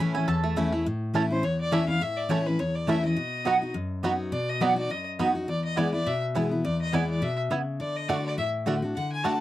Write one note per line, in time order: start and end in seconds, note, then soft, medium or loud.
0.00 0.25 A2 loud
0.00 0.15 E3 loud
0.00 0.15 A3 medium
0.00 0.26 A3 medium
0.00 0.41 C#4 medium
0.00 0.15 C#4 medium
0.00 0.13 E4 loud
0.00 0.27 A4 medium
0.00 0.14 B5 medium
0.14 0.28 C#4 medium
0.14 0.27 E4 medium
0.14 0.54 E4 medium
0.14 0.28 G#5 loud
0.28 0.83 E2 loud
0.28 0.69 A4 medium
0.28 0.55 A5 loud
0.44 0.71 A3 medium
0.56 0.72 E3 medium
0.56 0.72 A3 loud
0.56 0.72 C#4 loud
0.56 0.86 E4 medium
0.56 0.72 E4 loud
0.73 0.86 A3 medium
0.73 0.86 C#4 medium
0.73 0.85 E4 medium
0.86 1.41 A2 medium
1.14 1.29 E3 medium
1.14 1.30 A3 medium
1.14 1.24 A3 medium
1.14 1.22 A3 medium
1.14 1.30 C#4 medium
1.14 1.22 C#4 medium
1.14 1.25 E4 loud
1.14 1.29 E4 medium
1.14 1.22 E4 medium
1.14 1.25 C#5 loud
1.14 1.25 A5 loud
1.31 1.44 C#4 soft
1.31 1.43 E4 medium
1.31 1.45 C5 medium
1.43 1.98 E2 medium
1.43 1.60 C#5 medium
1.60 1.74 D5 medium
1.71 1.87 E3 loud
1.71 1.82 A3 medium
1.71 1.88 A3 medium
1.71 1.79 A3 medium
1.71 1.88 C#4 loud
1.71 1.80 C#4 medium
1.71 1.82 E4 medium
1.71 1.87 E4 loud
1.71 1.80 E4 medium
1.71 1.82 C#5 medium
1.71 1.88 E5 medium
1.71 1.82 A5 medium
1.88 2.01 C#4 soft
1.88 2.01 E4 medium
1.88 2.04 F5 loud
2.01 2.57 A2 medium
2.01 2.18 E5 medium
2.17 2.31 D5 medium
2.29 2.45 E3 medium
2.29 2.40 A3 medium
2.29 2.45 A3 medium
2.29 2.38 A3 medium
2.29 2.45 C#4 medium
2.29 2.38 C#4 medium
2.29 2.40 E4 medium
2.29 2.45 E4 medium
2.29 2.38 E4 medium
2.29 2.48 C#5 medium
2.29 2.40 C#5 medium
2.29 2.40 A5 loud
2.46 2.60 C#4 soft
2.46 2.59 E4 medium
2.46 2.61 B4 medium
2.59 3.14 E2 medium
2.59 2.77 C#5 medium
2.75 2.90 D5 medium
2.87 3.03 E3 medium
2.87 2.97 A3 medium
2.87 3.03 A3 medium
2.87 2.95 A3 medium
2.87 3.04 C#4 loud
2.87 2.96 C#4 medium
2.87 2.98 E4 medium
2.87 3.03 E4 loud
2.87 2.96 E4 medium
2.87 2.98 C#5 medium
2.87 3.04 E5 medium
2.87 2.98 A5 medium
3.04 3.17 C#4 soft
3.04 3.16 E4 medium
3.04 3.71 D#5 loud
3.17 3.72 B2 medium
3.45 3.61 F#3 medium
3.45 3.55 B3 medium
3.45 3.61 B3 medium
3.45 3.53 B3 medium
3.45 3.61 D#4 medium
3.45 3.53 D#4 medium
3.45 3.55 F#4 loud
3.45 3.60 F#4 medium
3.45 3.53 F#4 medium
3.45 3.55 D#5 loud
3.45 3.56 B5 loud
3.62 3.75 D#4 medium
3.62 3.74 F#4 medium
3.74 4.30 F#2 medium
4.03 4.31 F#3 medium
4.03 4.13 B3 medium
4.03 4.31 B3 medium
4.03 4.11 B3 medium
4.03 4.11 D#4 medium
4.03 4.32 D#4 medium
4.03 4.14 F#4 medium
4.03 4.32 F#4 loud
4.03 4.11 F#4 medium
4.03 4.14 D#5 medium
4.03 4.14 B5 medium
4.32 4.88 B2 medium
4.32 4.51 D5 medium
4.49 4.63 D#5 medium
4.61 4.76 F#3 medium
4.61 4.71 B3 medium
4.61 4.77 B3 medium
4.61 4.69 B3 medium
4.61 4.76 D#4 medium
4.61 4.69 D#4 medium
4.61 4.71 F#4 loud
4.61 4.75 F#4 medium
4.61 4.69 F#4 medium
4.61 4.77 D5 medium
4.61 4.71 D#5 loud
4.61 4.72 B5 loud
4.76 4.90 D#4 soft
4.76 4.89 F#4 medium
4.76 4.92 D5 loud
4.90 5.46 F#2 medium
4.90 5.06 D#5 medium
5.19 5.35 F#3 medium
5.19 5.29 B3 medium
5.19 5.26 B3 medium
5.19 5.35 B3 medium
5.19 5.27 D#4 medium
5.19 5.35 D#4 medium
5.19 5.29 F#4 medium
5.19 5.27 F#4 medium
5.19 5.34 F#4 loud
5.19 5.29 D#5 medium
5.19 5.30 B5 medium
5.35 5.48 D#4 soft
5.35 5.48 F#4 medium
5.48 6.03 E2 medium
5.48 5.63 D5 medium
5.64 5.79 D#5 medium
5.76 5.92 E3 medium
5.76 5.93 G#3 medium
5.76 5.87 B3 medium
5.76 5.84 B3 medium
5.76 5.93 B3 medium
5.76 5.87 E4 medium
5.76 5.80 E4 medium
5.76 5.91 E4 medium
5.76 5.87 B4 medium
5.76 5.92 D5 medium
5.76 5.87 G#5 loud
5.93 6.06 B3 medium
5.93 6.05 E4 medium
5.93 6.08 D5 medium
6.06 6.62 B2 medium
6.06 6.22 E5 medium
6.35 6.50 E3 medium
6.35 6.50 G#3 medium
6.35 6.45 B3 medium
6.35 6.42 B3 medium
6.35 6.51 B3 loud
6.35 6.45 E4 medium
6.35 6.38 E4 medium
6.35 6.50 E4 medium
6.35 6.45 B4 medium
6.35 6.45 G#5 medium
6.51 6.64 B3 soft
6.51 6.64 E4 medium
6.65 7.20 E2 loud
6.65 6.79 D5 medium
6.81 6.96 D#5 loud
6.92 7.21 E3 medium
6.92 7.21 G#3 medium
6.92 7.03 B3 medium
6.92 7.00 B3 medium
6.92 7.21 B3 medium
6.92 7.03 E4 medium
6.92 6.96 E4 medium
6.92 7.21 E4 loud
6.92 7.03 B4 medium
6.92 7.09 D5 medium
6.92 7.03 G#5 loud
7.10 7.24 D5 medium
7.22 7.49 B2 medium
7.22 7.38 E5 loud
7.50 7.78 C#3 medium
7.50 7.60 B3 medium
7.50 7.58 B3 medium
7.50 7.61 E4 medium
7.50 7.54 E4 medium
7.50 7.61 B4 medium
7.50 7.61 G#5 medium
7.80 8.08 D3 medium
7.80 7.98 D5 medium
7.96 8.10 D#5 loud
8.08 8.36 D3 medium
8.08 8.18 A3 medium
8.08 8.36 A3 medium
8.08 8.16 A3 medium
8.08 8.16 D4 medium
8.08 8.37 D4 medium
8.08 8.19 F#4 loud
8.08 8.16 F#4 medium
8.08 8.37 F#4 loud
8.08 8.24 D5 medium
8.08 8.19 D5 medium
8.08 8.19 F#5 medium
8.25 8.37 D5 medium
8.38 8.93 A2 medium
8.38 8.47 E5 medium
8.66 8.81 D3 medium
8.66 8.76 A3 medium
8.66 8.82 A3 medium
8.66 8.74 A3 medium
8.66 8.82 D4 medium
8.66 8.74 D4 medium
8.66 8.76 F#4 medium
8.66 8.81 F#4 medium
8.66 8.74 F#4 medium
8.66 8.76 D5 medium
8.66 8.76 F#5 medium
8.82 8.96 D4 soft
8.82 8.95 F#4 medium
8.96 9.23 D3 medium
8.96 9.10 F#5 medium
9.12 9.26 G#5 loud
9.24 9.40 D3 medium
9.24 9.34 A3 medium
9.24 9.40 A3 medium
9.24 9.32 A3 medium
9.24 9.32 D4 medium
9.24 9.40 D4 medium
9.24 9.34 F#4 medium
9.24 9.40 F#4 loud
9.24 9.32 F#4 medium
9.24 9.34 D5 medium
9.24 9.35 F#5 medium
9.24 9.40 A5 medium